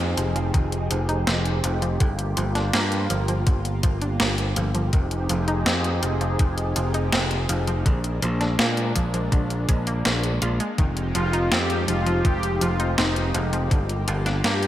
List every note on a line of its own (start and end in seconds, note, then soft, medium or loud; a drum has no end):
0.00 0.14 F2 medium
0.00 1.97 F3 medium
0.00 1.97 C4 medium
0.00 1.97 D#4 medium
0.00 4.89 G4 medium
0.00 1.97 G#4 medium
0.17 0.50 F1 medium
0.17 0.30 F3 medium
0.17 closed hi-hat medium
0.36 0.48 F3 medium
0.36 closed hi-hat soft
0.54 0.87 F1 medium
0.54 0.61 D#3 medium
0.54 kick loud
0.54 closed hi-hat medium
0.72 closed hi-hat soft
0.90 1.24 F1 medium
0.90 0.98 F3 medium
0.90 closed hi-hat medium
1.09 1.21 D#4 medium
1.09 closed hi-hat soft
1.27 1.60 F1 medium
1.27 1.40 C4 medium
1.27 snare loud
1.27 closed hi-hat medium
1.46 closed hi-hat soft
1.64 1.97 F1 loud
1.64 1.76 F3 medium
1.64 closed hi-hat loud
1.82 1.94 F3 medium
1.82 closed hi-hat soft
2.00 2.33 G1 loud
2.00 2.08 D3 medium
2.00 4.90 A#3 medium
2.00 4.90 F4 medium
2.00 kick loud
2.00 closed hi-hat medium
2.19 closed hi-hat soft
2.37 2.70 G1 loud
2.37 2.44 F3 medium
2.37 closed hi-hat medium
2.55 2.68 D4 medium
2.55 snare soft
2.55 closed hi-hat soft
2.73 3.07 G2 medium
2.73 2.86 A#3 loud
2.73 snare loud
2.73 closed hi-hat medium
2.92 closed hi-hat soft
3.10 3.43 G1 medium
3.10 3.23 F3 medium
3.10 closed hi-hat medium
3.28 3.41 F3 medium
3.28 closed hi-hat soft
3.47 3.80 G1 medium
3.47 3.54 D3 medium
3.47 kick loud
3.47 closed hi-hat medium
3.65 closed hi-hat soft
3.83 4.16 G1 medium
3.83 3.91 F3 medium
3.83 kick loud
3.83 closed hi-hat medium
4.02 4.14 D4 medium
4.02 closed hi-hat soft
4.20 4.53 G1 medium
4.20 4.32 A#3 loud
4.20 snare loud
4.20 closed hi-hat medium
4.38 closed hi-hat soft
4.56 4.89 G1 loud
4.56 4.69 F3 medium
4.56 closed hi-hat medium
4.75 4.87 F3 medium
4.75 closed hi-hat soft
4.93 5.01 D#3 medium
4.93 7.83 F3 medium
4.93 7.83 C4 medium
4.93 7.83 D#4 medium
4.93 7.83 G4 medium
4.93 7.83 G#4 medium
4.93 kick loud
4.93 closed hi-hat medium
5.11 closed hi-hat soft
5.29 5.63 F1 loud
5.29 5.37 F3 medium
5.29 closed hi-hat medium
5.48 5.60 D#4 medium
5.48 closed hi-hat soft
5.66 5.99 F2 medium
5.66 5.79 C4 loud
5.66 snare loud
5.66 closed hi-hat medium
5.84 closed hi-hat soft
6.03 6.36 F1 medium
6.03 6.15 F3 medium
6.03 closed hi-hat medium
6.21 6.34 F3 medium
6.21 closed hi-hat soft
6.39 6.72 F1 medium
6.39 6.47 D#3 medium
6.39 kick loud
6.39 closed hi-hat medium
6.58 closed hi-hat soft
6.76 7.09 F1 medium
6.76 6.83 F3 medium
6.76 closed hi-hat medium
6.94 7.07 D#4 medium
6.94 closed hi-hat soft
7.12 7.46 F1 medium
7.12 7.25 C4 loud
7.12 snare loud
7.12 closed hi-hat medium
7.31 closed hi-hat soft
7.49 7.82 F1 loud
7.49 7.62 F3 medium
7.49 closed hi-hat medium
7.67 7.80 F3 medium
7.67 closed hi-hat soft
7.86 8.19 A#1 loud
7.86 7.93 D3 medium
7.86 10.76 G#3 medium
7.86 10.76 A#3 medium
7.86 10.76 D4 medium
7.86 kick loud
7.86 closed hi-hat medium
8.04 closed hi-hat soft
8.22 8.55 A#1 loud
8.22 8.30 F3 medium
8.22 closed hi-hat medium
8.41 8.53 D4 medium
8.41 snare soft
8.41 closed hi-hat soft
8.59 8.92 A#2 medium
8.59 8.71 A#3 loud
8.59 snare loud
8.59 closed hi-hat medium
8.77 closed hi-hat soft
8.95 9.28 A#1 medium
8.95 9.08 F3 medium
8.95 kick medium
8.95 closed hi-hat medium
9.14 9.26 F3 medium
9.14 closed hi-hat soft
9.32 9.65 A#1 medium
9.32 9.40 D3 medium
9.32 kick loud
9.32 closed hi-hat medium
9.50 closed hi-hat soft
9.69 10.02 A#1 medium
9.69 9.81 G#3 medium
9.69 kick loud
9.69 closed hi-hat medium
9.87 9.99 A#3 medium
9.87 closed hi-hat soft
10.05 10.38 A#1 loud
10.05 10.13 A#3 medium
10.05 snare loud
10.05 closed hi-hat medium
10.24 closed hi-hat soft
10.42 10.58 A#1 medium
10.42 10.54 F4 medium
10.42 closed hi-hat medium
10.60 10.73 G#3 medium
10.60 closed hi-hat soft
10.78 11.11 F1 loud
10.78 10.86 D#3 medium
10.78 13.68 F3 medium
10.78 13.68 G#3 medium
10.78 13.68 C4 medium
10.78 13.68 D#4 medium
10.78 14.67 G4 medium
10.78 kick loud
10.78 closed hi-hat medium
10.97 closed hi-hat soft
11.15 11.48 F1 loud
11.15 11.22 F3 medium
11.15 11.53 F4 loud
11.15 closed hi-hat medium
11.33 11.46 D#4 medium
11.33 closed hi-hat soft
11.52 11.85 F2 medium
11.52 11.64 C4 loud
11.52 11.89 G4 loud
11.52 snare loud
11.52 closed hi-hat medium
11.70 closed hi-hat soft
11.88 12.21 F1 medium
11.88 12.01 F3 medium
11.88 12.26 F4 loud
11.88 closed hi-hat medium
12.06 12.19 F3 medium
12.06 closed hi-hat soft
12.25 12.58 F1 medium
12.25 12.32 D#3 medium
12.25 12.62 G4 loud
12.25 kick loud
12.25 closed hi-hat medium
12.43 closed hi-hat soft
12.61 12.94 F1 medium
12.61 12.69 F3 medium
12.61 12.95 F4 medium
12.61 closed hi-hat medium
12.80 12.92 D#4 medium
12.80 closed hi-hat soft
12.98 13.31 F1 medium
12.98 13.10 C4 medium
12.98 13.49 D#4 medium
12.98 snare loud
12.98 closed hi-hat medium
13.16 closed hi-hat soft
13.35 13.68 F1 loud
13.35 13.47 F3 medium
13.35 closed hi-hat medium
13.53 13.65 F3 medium
13.53 closed hi-hat soft
13.71 14.04 G1 loud
13.71 13.79 D3 medium
13.71 14.67 A#3 medium
13.71 14.67 F4 medium
13.71 kick loud
13.71 closed hi-hat medium
13.89 closed hi-hat soft
14.08 14.41 G1 loud
14.08 14.15 F3 medium
14.08 closed hi-hat medium
14.26 14.38 D4 medium
14.26 snare soft
14.26 closed hi-hat soft
14.44 14.67 G2 medium
14.44 14.57 A#3 loud
14.44 14.67 G4 medium
14.44 snare loud
14.44 closed hi-hat medium
14.63 closed hi-hat soft